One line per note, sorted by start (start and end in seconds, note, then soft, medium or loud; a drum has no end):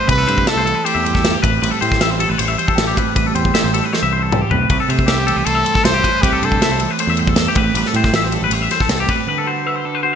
0.00 0.64 E3 medium
0.00 0.28 A3 medium
0.00 0.47 E4 medium
0.06 0.24 C2 medium
0.06 0.65 C3 medium
0.06 1.43 C4 medium
0.06 0.18 B4 medium
0.06 kick medium
0.06 ride medium
0.11 0.50 B4 loud
0.18 0.28 A4 medium
0.27 0.44 G2 medium
0.27 0.84 A3 medium
0.27 0.47 C5 medium
0.27 ride medium
0.38 kick medium
0.47 1.81 E4 medium
0.47 0.87 A4 medium
0.47 0.57 E5 medium
0.47 snare loud
0.47 ride medium
0.56 0.72 C2 medium
0.56 0.65 C5 medium
0.64 2.00 E3 medium
0.64 0.75 A4 medium
0.64 ride medium
0.75 0.85 B4 medium
0.85 1.61 A3 medium
0.85 1.43 G4 medium
0.85 0.95 C5 medium
0.85 ride medium
0.94 1.35 E2 medium
0.94 1.05 E5 medium
1.04 1.41 G2 medium
1.04 1.14 C5 medium
1.04 ride medium
1.14 1.33 A4 medium
1.14 kick medium
1.14 snare soft
1.25 snare loud
1.25 ride medium
1.33 1.42 G4 medium
1.43 1.59 A1 medium
1.43 2.39 A2 medium
1.43 2.95 C4 medium
1.43 1.61 B4 medium
1.43 kick loud
1.43 ride medium
1.62 1.71 A1 loud
1.62 2.19 G3 medium
1.62 1.71 B4 medium
1.62 ride medium
1.71 1.81 A4 medium
1.81 1.98 A2 medium
1.81 2.75 G4 medium
1.81 2.01 C5 medium
1.81 ride medium
1.92 kick medium
1.92 snare soft
2.00 2.25 A1 medium
2.00 3.54 E3 medium
2.00 2.11 E5 medium
2.00 snare loud
2.00 ride medium
2.11 2.20 C5 medium
2.20 3.15 G3 medium
2.20 2.29 A4 medium
2.20 ride medium
2.29 2.38 A1 medium
2.29 2.38 B4 medium
2.38 2.55 A1 medium
2.38 2.96 E2 medium
2.38 2.48 C5 medium
2.38 ride medium
2.48 2.58 E5 medium
2.58 2.68 C5 medium
2.58 ride medium
2.68 2.87 A4 medium
2.68 kick medium
2.76 2.93 A1 medium
2.76 2.98 G4 medium
2.76 snare loud
2.76 ride medium
2.87 2.97 G4 medium
2.95 3.92 A2 medium
2.95 4.52 C4 medium
2.95 3.15 B4 medium
2.95 kick medium
2.95 ride medium
3.15 3.32 A1 medium
3.15 3.75 G3 medium
3.15 3.27 B4 medium
3.15 kick loud
3.15 ride medium
3.27 3.35 A4 medium
3.35 3.51 E2 medium
3.35 4.33 G4 medium
3.35 3.55 C5 medium
3.35 ride medium
3.45 kick medium
3.54 5.28 E3 medium
3.54 3.64 E5 medium
3.54 snare loud
3.54 ride medium
3.64 3.80 A1 medium
3.64 3.73 C5 medium
3.74 4.91 G3 medium
3.74 3.84 A4 medium
3.74 ride medium
3.84 3.93 B4 medium
3.93 4.51 E2 medium
3.93 4.03 C5 medium
3.93 snare medium
4.03 4.42 C2 medium
4.03 4.12 E5 medium
4.13 4.23 C5 medium
4.23 4.41 A4 medium
4.32 4.55 G4 medium
4.32 mid tom medium
4.41 4.51 G4 medium
4.51 4.67 B1 medium
4.51 4.71 A2 medium
4.51 4.73 C4 medium
4.51 4.69 B4 medium
4.51 floor tom medium
4.70 4.78 C2 loud
4.70 5.29 C3 medium
4.70 6.23 C4 medium
4.70 4.80 B4 medium
4.70 kick loud
4.70 ride medium
4.80 4.89 A4 medium
4.89 5.05 C3 medium
4.89 5.45 A3 medium
4.89 5.08 C5 medium
4.89 ride medium
4.99 kick medium
5.06 5.32 C2 medium
5.06 6.03 E4 medium
5.06 5.47 G4 medium
5.06 5.18 E5 medium
5.06 snare loud
5.06 ride medium
5.18 5.26 C5 medium
5.27 6.81 E3 medium
5.27 5.36 A4 medium
5.27 ride medium
5.36 5.44 C2 medium
5.36 5.45 B4 medium
5.45 5.62 C2 medium
5.45 6.43 A3 medium
5.45 5.86 A4 medium
5.45 5.55 C5 medium
5.45 ride medium
5.55 5.65 E5 medium
5.65 6.20 G2 medium
5.65 5.75 C5 medium
5.65 ride medium
5.74 5.93 A4 medium
5.74 kick medium
5.74 snare soft
5.84 6.00 C2 medium
5.84 6.24 C5 loud
5.84 snare loud
5.84 ride medium
5.94 6.04 G4 medium
6.04 6.62 E4 medium
6.04 6.22 B4 medium
6.04 kick medium
6.04 ride medium
6.22 6.39 C2 loud
6.22 6.80 C3 medium
6.22 7.57 C4 medium
6.22 6.47 G4 medium
6.22 6.33 B4 medium
6.22 kick loud
6.22 ride medium
6.33 6.42 A4 medium
6.42 6.58 G2 medium
6.42 7.00 A3 medium
6.42 6.82 A4 medium
6.42 6.62 C5 medium
6.42 ride medium
6.52 kick medium
6.62 7.95 E4 medium
6.62 6.71 E5 medium
6.62 snare loud
6.62 ride medium
6.69 6.86 C2 medium
6.69 6.81 C5 medium
6.80 8.13 E3 medium
6.80 6.91 A4 medium
6.80 ride medium
6.91 7.00 B4 medium
6.99 7.76 A3 medium
6.99 7.09 C5 medium
6.99 ride medium
7.07 7.47 E2 medium
7.07 7.19 E5 medium
7.17 7.55 G2 medium
7.17 7.29 C5 medium
7.17 ride medium
7.27 7.48 A4 medium
7.27 kick medium
7.36 snare loud
7.36 ride medium
7.48 7.57 G4 medium
7.55 7.72 A1 medium
7.55 8.52 A2 medium
7.55 9.05 C4 medium
7.55 7.76 B4 medium
7.55 kick loud
7.55 ride medium
7.74 7.83 A1 loud
7.74 8.33 G3 medium
7.74 7.87 B4 medium
7.74 ride medium
7.85 7.96 A4 medium
7.85 snare soft
7.94 8.10 A2 medium
7.94 8.88 G4 medium
7.94 8.15 C5 medium
7.94 ride medium
8.04 kick medium
8.04 snare soft
8.12 8.37 A1 medium
8.12 9.07 E3 medium
8.12 8.24 E5 medium
8.12 snare loud
8.12 ride medium
8.23 8.34 C5 medium
8.23 snare soft
8.32 9.85 G3 medium
8.32 8.43 A4 medium
8.32 ride medium
8.41 8.49 A1 medium
8.41 8.53 B4 medium
8.50 8.67 A1 medium
8.50 9.09 E2 medium
8.50 8.62 C5 medium
8.50 ride medium
8.62 8.71 E5 medium
8.71 8.81 C5 medium
8.71 snare soft
8.71 ride medium
8.80 9.00 A4 medium
8.80 kick medium
8.80 snare soft
8.89 9.05 C2 medium
8.89 9.06 G4 medium
8.89 snare loud
8.89 ride medium
9.00 9.09 G4 medium
9.06 9.27 A2 medium
9.06 9.25 C4 medium
9.06 9.27 B4 medium
9.06 kick medium
9.06 ride medium
9.27 10.15 D3 medium
9.27 9.65 B4 medium
9.27 9.38 B4 medium
9.38 9.47 A4 medium
9.46 10.03 F#4 medium
9.46 9.67 C5 medium
9.66 10.15 B4 medium
9.66 9.76 E5 medium
9.76 9.85 C5 medium
9.85 10.15 D4 medium
9.85 9.95 A4 medium
9.95 10.03 B4 medium
10.03 10.15 F#4 medium
10.03 10.13 C5 medium